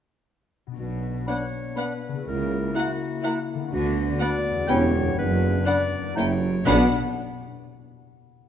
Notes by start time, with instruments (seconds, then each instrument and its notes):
0.67 harp B2 B3
0.72 harp D4 F#4
0.78 tuba B1, double bass section B1, cello section B2, french horn section B3 D4, clarinet F#4
1.27 viola section B3, bassoon D4, violin section D4 F#5, clarinet C#5, oboe F#5, flute B5
1.76 viola section B3, violin section D4 F#5, bassoon D4, clarinet B4, oboe F#5, flute B5
2.08 harp C#3
2.13 harp A#3
2.18 harp E4
2.22 double bass section C#2, french horn section A#3 E4, harp F#4
2.26 tuba C#2, cello section C#3, clarinet A#4
2.75 viola section A#3, bassoon E4, violin section E4 F#5, clarinet F#4, oboe F#5, flute A#5
3.23 viola section A#3, violin section E4 F#5, bassoon E4, oboe F#5, flute A#5
3.54 harp D3
3.59 harp B3
3.63 harp D4
3.68 harp F#4
3.72 double bass section D2, tuba D2, cello section D3, french horn section B3 F#4, clarinet F#4
4.20 viola section B3, violin section D4 F#5, bassoon D4, clarinet D5, oboe F#5, flute B5
4.51 harp E2
4.55 harp B3
4.60 harp C#4
4.64 violin section C#4, harp G4, oboe G5
4.68 double bass section E1, tuba E1, cello section E2, viola section B3, bassoon C#4, french horn section G4, clarinet C#5, violin section G5, flute B5
4.99 harp F#2
5.04 harp B3
5.08 harp D4
5.13 harp F#4
5.17 double bass section F#1, tuba F#1, cello section F#2, french horn section D4, clarinet B4
5.65 viola section B3, violin section D4 F#5, bassoon D4, clarinet D5, oboe F#5, flute B5
5.98 harp F#2
6.03 harp A#3
6.07 harp E4
6.12 harp G4, flute A#5
6.16 double bass section F#1, tuba F#1, cello section F#2, french horn section A#3 E4, viola section A#3, bassoon E4, violin section E4 G5, clarinet C#5, oboe G5
6.64 double bass section B1, harp B2 B3 D5, cello section B2, french horn section B3 D4, violin section D4 F#5, bassoon D4, clarinet B4, oboe F#5, flute B5
6.68 tuba B1, viola section B3, harp D4 F#4